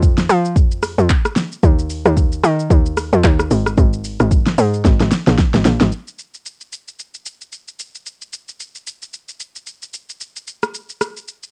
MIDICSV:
0, 0, Header, 1, 3, 480
1, 0, Start_track
1, 0, Tempo, 535714
1, 1464, Time_signature, 4, 2, 24, 8
1, 10313, End_track
2, 0, Start_track
2, 0, Title_t, "Log drum bass"
2, 0, Program_c, 0, 39
2, 0, Note_on_c, 0, 41, 93
2, 252, Note_off_c, 0, 41, 0
2, 263, Note_on_c, 0, 53, 109
2, 500, Note_on_c, 0, 41, 98
2, 514, Note_off_c, 0, 53, 0
2, 867, Note_off_c, 0, 41, 0
2, 880, Note_on_c, 0, 41, 89
2, 978, Note_off_c, 0, 41, 0
2, 1462, Note_on_c, 0, 39, 98
2, 1828, Note_off_c, 0, 39, 0
2, 1841, Note_on_c, 0, 39, 101
2, 2170, Note_off_c, 0, 39, 0
2, 2182, Note_on_c, 0, 51, 105
2, 2414, Note_off_c, 0, 51, 0
2, 2422, Note_on_c, 0, 39, 91
2, 2788, Note_off_c, 0, 39, 0
2, 2802, Note_on_c, 0, 41, 98
2, 2900, Note_off_c, 0, 41, 0
2, 2904, Note_on_c, 0, 39, 103
2, 3135, Note_off_c, 0, 39, 0
2, 3143, Note_on_c, 0, 32, 98
2, 3375, Note_off_c, 0, 32, 0
2, 3383, Note_on_c, 0, 32, 106
2, 3749, Note_off_c, 0, 32, 0
2, 3764, Note_on_c, 0, 32, 94
2, 4092, Note_off_c, 0, 32, 0
2, 4105, Note_on_c, 0, 44, 103
2, 4336, Note_off_c, 0, 44, 0
2, 4342, Note_on_c, 0, 32, 100
2, 4477, Note_off_c, 0, 32, 0
2, 4483, Note_on_c, 0, 32, 89
2, 4580, Note_off_c, 0, 32, 0
2, 4723, Note_on_c, 0, 34, 98
2, 4820, Note_off_c, 0, 34, 0
2, 4963, Note_on_c, 0, 32, 93
2, 5060, Note_off_c, 0, 32, 0
2, 5064, Note_on_c, 0, 34, 89
2, 5198, Note_off_c, 0, 34, 0
2, 5203, Note_on_c, 0, 32, 88
2, 5300, Note_off_c, 0, 32, 0
2, 10313, End_track
3, 0, Start_track
3, 0, Title_t, "Drums"
3, 22, Note_on_c, 9, 36, 101
3, 24, Note_on_c, 9, 82, 85
3, 112, Note_off_c, 9, 36, 0
3, 113, Note_off_c, 9, 82, 0
3, 158, Note_on_c, 9, 82, 54
3, 159, Note_on_c, 9, 38, 69
3, 248, Note_off_c, 9, 82, 0
3, 249, Note_off_c, 9, 38, 0
3, 264, Note_on_c, 9, 46, 62
3, 264, Note_on_c, 9, 82, 103
3, 353, Note_off_c, 9, 46, 0
3, 353, Note_off_c, 9, 82, 0
3, 403, Note_on_c, 9, 82, 59
3, 493, Note_off_c, 9, 82, 0
3, 501, Note_on_c, 9, 36, 115
3, 504, Note_on_c, 9, 82, 78
3, 590, Note_off_c, 9, 36, 0
3, 593, Note_off_c, 9, 82, 0
3, 640, Note_on_c, 9, 82, 63
3, 729, Note_off_c, 9, 82, 0
3, 740, Note_on_c, 9, 37, 101
3, 740, Note_on_c, 9, 46, 62
3, 740, Note_on_c, 9, 82, 104
3, 830, Note_off_c, 9, 37, 0
3, 830, Note_off_c, 9, 46, 0
3, 830, Note_off_c, 9, 82, 0
3, 881, Note_on_c, 9, 82, 51
3, 971, Note_off_c, 9, 82, 0
3, 980, Note_on_c, 9, 82, 77
3, 983, Note_on_c, 9, 36, 99
3, 983, Note_on_c, 9, 39, 97
3, 1070, Note_off_c, 9, 82, 0
3, 1073, Note_off_c, 9, 36, 0
3, 1073, Note_off_c, 9, 39, 0
3, 1121, Note_on_c, 9, 37, 97
3, 1121, Note_on_c, 9, 82, 64
3, 1211, Note_off_c, 9, 37, 0
3, 1211, Note_off_c, 9, 82, 0
3, 1219, Note_on_c, 9, 38, 77
3, 1222, Note_on_c, 9, 46, 55
3, 1222, Note_on_c, 9, 82, 98
3, 1309, Note_off_c, 9, 38, 0
3, 1312, Note_off_c, 9, 46, 0
3, 1312, Note_off_c, 9, 82, 0
3, 1362, Note_on_c, 9, 82, 56
3, 1452, Note_off_c, 9, 82, 0
3, 1462, Note_on_c, 9, 36, 123
3, 1462, Note_on_c, 9, 82, 78
3, 1551, Note_off_c, 9, 82, 0
3, 1552, Note_off_c, 9, 36, 0
3, 1603, Note_on_c, 9, 82, 60
3, 1693, Note_off_c, 9, 82, 0
3, 1702, Note_on_c, 9, 46, 50
3, 1702, Note_on_c, 9, 82, 86
3, 1791, Note_off_c, 9, 46, 0
3, 1791, Note_off_c, 9, 82, 0
3, 1840, Note_on_c, 9, 82, 57
3, 1843, Note_on_c, 9, 37, 92
3, 1930, Note_off_c, 9, 82, 0
3, 1932, Note_off_c, 9, 37, 0
3, 1942, Note_on_c, 9, 36, 94
3, 1945, Note_on_c, 9, 82, 86
3, 2032, Note_off_c, 9, 36, 0
3, 2034, Note_off_c, 9, 82, 0
3, 2080, Note_on_c, 9, 82, 59
3, 2170, Note_off_c, 9, 82, 0
3, 2184, Note_on_c, 9, 37, 104
3, 2186, Note_on_c, 9, 46, 62
3, 2186, Note_on_c, 9, 82, 111
3, 2274, Note_off_c, 9, 37, 0
3, 2275, Note_off_c, 9, 46, 0
3, 2275, Note_off_c, 9, 82, 0
3, 2325, Note_on_c, 9, 82, 59
3, 2415, Note_off_c, 9, 82, 0
3, 2422, Note_on_c, 9, 36, 117
3, 2426, Note_on_c, 9, 82, 79
3, 2512, Note_off_c, 9, 36, 0
3, 2516, Note_off_c, 9, 82, 0
3, 2562, Note_on_c, 9, 82, 63
3, 2652, Note_off_c, 9, 82, 0
3, 2663, Note_on_c, 9, 37, 101
3, 2663, Note_on_c, 9, 46, 61
3, 2663, Note_on_c, 9, 82, 101
3, 2752, Note_off_c, 9, 46, 0
3, 2752, Note_off_c, 9, 82, 0
3, 2753, Note_off_c, 9, 37, 0
3, 2804, Note_on_c, 9, 82, 55
3, 2893, Note_off_c, 9, 82, 0
3, 2901, Note_on_c, 9, 82, 74
3, 2904, Note_on_c, 9, 36, 100
3, 2904, Note_on_c, 9, 39, 98
3, 2991, Note_off_c, 9, 82, 0
3, 2994, Note_off_c, 9, 36, 0
3, 2994, Note_off_c, 9, 39, 0
3, 3042, Note_on_c, 9, 37, 101
3, 3042, Note_on_c, 9, 82, 63
3, 3131, Note_off_c, 9, 37, 0
3, 3131, Note_off_c, 9, 82, 0
3, 3144, Note_on_c, 9, 46, 59
3, 3144, Note_on_c, 9, 82, 98
3, 3233, Note_off_c, 9, 46, 0
3, 3233, Note_off_c, 9, 82, 0
3, 3283, Note_on_c, 9, 37, 102
3, 3285, Note_on_c, 9, 82, 57
3, 3373, Note_off_c, 9, 37, 0
3, 3375, Note_off_c, 9, 82, 0
3, 3384, Note_on_c, 9, 36, 122
3, 3384, Note_on_c, 9, 82, 75
3, 3473, Note_off_c, 9, 36, 0
3, 3473, Note_off_c, 9, 82, 0
3, 3524, Note_on_c, 9, 82, 61
3, 3614, Note_off_c, 9, 82, 0
3, 3623, Note_on_c, 9, 46, 52
3, 3623, Note_on_c, 9, 82, 93
3, 3713, Note_off_c, 9, 46, 0
3, 3713, Note_off_c, 9, 82, 0
3, 3761, Note_on_c, 9, 82, 57
3, 3763, Note_on_c, 9, 37, 91
3, 3851, Note_off_c, 9, 82, 0
3, 3853, Note_off_c, 9, 37, 0
3, 3863, Note_on_c, 9, 36, 100
3, 3864, Note_on_c, 9, 82, 89
3, 3952, Note_off_c, 9, 36, 0
3, 3954, Note_off_c, 9, 82, 0
3, 4000, Note_on_c, 9, 82, 57
3, 4001, Note_on_c, 9, 38, 68
3, 4090, Note_off_c, 9, 82, 0
3, 4091, Note_off_c, 9, 38, 0
3, 4105, Note_on_c, 9, 46, 64
3, 4105, Note_on_c, 9, 82, 106
3, 4195, Note_off_c, 9, 46, 0
3, 4195, Note_off_c, 9, 82, 0
3, 4244, Note_on_c, 9, 82, 59
3, 4334, Note_off_c, 9, 82, 0
3, 4342, Note_on_c, 9, 36, 113
3, 4345, Note_on_c, 9, 38, 61
3, 4346, Note_on_c, 9, 82, 74
3, 4432, Note_off_c, 9, 36, 0
3, 4434, Note_off_c, 9, 38, 0
3, 4436, Note_off_c, 9, 82, 0
3, 4481, Note_on_c, 9, 82, 64
3, 4484, Note_on_c, 9, 38, 60
3, 4571, Note_off_c, 9, 82, 0
3, 4573, Note_off_c, 9, 38, 0
3, 4583, Note_on_c, 9, 46, 59
3, 4583, Note_on_c, 9, 82, 104
3, 4584, Note_on_c, 9, 38, 80
3, 4672, Note_off_c, 9, 46, 0
3, 4672, Note_off_c, 9, 82, 0
3, 4674, Note_off_c, 9, 38, 0
3, 4723, Note_on_c, 9, 82, 51
3, 4724, Note_on_c, 9, 38, 75
3, 4813, Note_off_c, 9, 38, 0
3, 4813, Note_off_c, 9, 82, 0
3, 4823, Note_on_c, 9, 82, 80
3, 4825, Note_on_c, 9, 36, 100
3, 4825, Note_on_c, 9, 38, 93
3, 4913, Note_off_c, 9, 82, 0
3, 4914, Note_off_c, 9, 36, 0
3, 4915, Note_off_c, 9, 38, 0
3, 4963, Note_on_c, 9, 82, 63
3, 4964, Note_on_c, 9, 38, 84
3, 5053, Note_off_c, 9, 82, 0
3, 5054, Note_off_c, 9, 38, 0
3, 5064, Note_on_c, 9, 38, 105
3, 5064, Note_on_c, 9, 46, 58
3, 5064, Note_on_c, 9, 82, 93
3, 5153, Note_off_c, 9, 38, 0
3, 5153, Note_off_c, 9, 46, 0
3, 5153, Note_off_c, 9, 82, 0
3, 5203, Note_on_c, 9, 38, 101
3, 5204, Note_on_c, 9, 82, 56
3, 5292, Note_off_c, 9, 38, 0
3, 5294, Note_off_c, 9, 82, 0
3, 5303, Note_on_c, 9, 82, 66
3, 5393, Note_off_c, 9, 82, 0
3, 5443, Note_on_c, 9, 82, 58
3, 5533, Note_off_c, 9, 82, 0
3, 5544, Note_on_c, 9, 82, 82
3, 5633, Note_off_c, 9, 82, 0
3, 5682, Note_on_c, 9, 82, 55
3, 5771, Note_off_c, 9, 82, 0
3, 5785, Note_on_c, 9, 82, 79
3, 5874, Note_off_c, 9, 82, 0
3, 5920, Note_on_c, 9, 82, 52
3, 6009, Note_off_c, 9, 82, 0
3, 6025, Note_on_c, 9, 82, 99
3, 6114, Note_off_c, 9, 82, 0
3, 6164, Note_on_c, 9, 82, 54
3, 6253, Note_off_c, 9, 82, 0
3, 6265, Note_on_c, 9, 82, 69
3, 6355, Note_off_c, 9, 82, 0
3, 6400, Note_on_c, 9, 82, 61
3, 6490, Note_off_c, 9, 82, 0
3, 6502, Note_on_c, 9, 82, 94
3, 6592, Note_off_c, 9, 82, 0
3, 6642, Note_on_c, 9, 82, 50
3, 6732, Note_off_c, 9, 82, 0
3, 6741, Note_on_c, 9, 82, 73
3, 6831, Note_off_c, 9, 82, 0
3, 6882, Note_on_c, 9, 82, 57
3, 6971, Note_off_c, 9, 82, 0
3, 6984, Note_on_c, 9, 82, 89
3, 7074, Note_off_c, 9, 82, 0
3, 7124, Note_on_c, 9, 82, 53
3, 7213, Note_off_c, 9, 82, 0
3, 7223, Note_on_c, 9, 82, 67
3, 7313, Note_off_c, 9, 82, 0
3, 7362, Note_on_c, 9, 82, 57
3, 7452, Note_off_c, 9, 82, 0
3, 7463, Note_on_c, 9, 82, 81
3, 7552, Note_off_c, 9, 82, 0
3, 7602, Note_on_c, 9, 82, 55
3, 7692, Note_off_c, 9, 82, 0
3, 7705, Note_on_c, 9, 82, 82
3, 7795, Note_off_c, 9, 82, 0
3, 7841, Note_on_c, 9, 82, 53
3, 7931, Note_off_c, 9, 82, 0
3, 7946, Note_on_c, 9, 82, 100
3, 8036, Note_off_c, 9, 82, 0
3, 8084, Note_on_c, 9, 82, 51
3, 8174, Note_off_c, 9, 82, 0
3, 8185, Note_on_c, 9, 82, 70
3, 8275, Note_off_c, 9, 82, 0
3, 8320, Note_on_c, 9, 82, 59
3, 8410, Note_off_c, 9, 82, 0
3, 8422, Note_on_c, 9, 82, 97
3, 8512, Note_off_c, 9, 82, 0
3, 8563, Note_on_c, 9, 82, 49
3, 8652, Note_off_c, 9, 82, 0
3, 8662, Note_on_c, 9, 82, 70
3, 8751, Note_off_c, 9, 82, 0
3, 8803, Note_on_c, 9, 82, 58
3, 8892, Note_off_c, 9, 82, 0
3, 8904, Note_on_c, 9, 82, 86
3, 8994, Note_off_c, 9, 82, 0
3, 9045, Note_on_c, 9, 82, 54
3, 9135, Note_off_c, 9, 82, 0
3, 9144, Note_on_c, 9, 82, 66
3, 9234, Note_off_c, 9, 82, 0
3, 9283, Note_on_c, 9, 82, 60
3, 9373, Note_off_c, 9, 82, 0
3, 9384, Note_on_c, 9, 82, 83
3, 9474, Note_off_c, 9, 82, 0
3, 9522, Note_on_c, 9, 82, 53
3, 9523, Note_on_c, 9, 37, 89
3, 9611, Note_off_c, 9, 82, 0
3, 9613, Note_off_c, 9, 37, 0
3, 9625, Note_on_c, 9, 82, 81
3, 9714, Note_off_c, 9, 82, 0
3, 9760, Note_on_c, 9, 82, 54
3, 9849, Note_off_c, 9, 82, 0
3, 9864, Note_on_c, 9, 37, 95
3, 9865, Note_on_c, 9, 82, 98
3, 9953, Note_off_c, 9, 37, 0
3, 9955, Note_off_c, 9, 82, 0
3, 10005, Note_on_c, 9, 82, 56
3, 10094, Note_off_c, 9, 82, 0
3, 10106, Note_on_c, 9, 82, 72
3, 10195, Note_off_c, 9, 82, 0
3, 10241, Note_on_c, 9, 82, 59
3, 10313, Note_off_c, 9, 82, 0
3, 10313, End_track
0, 0, End_of_file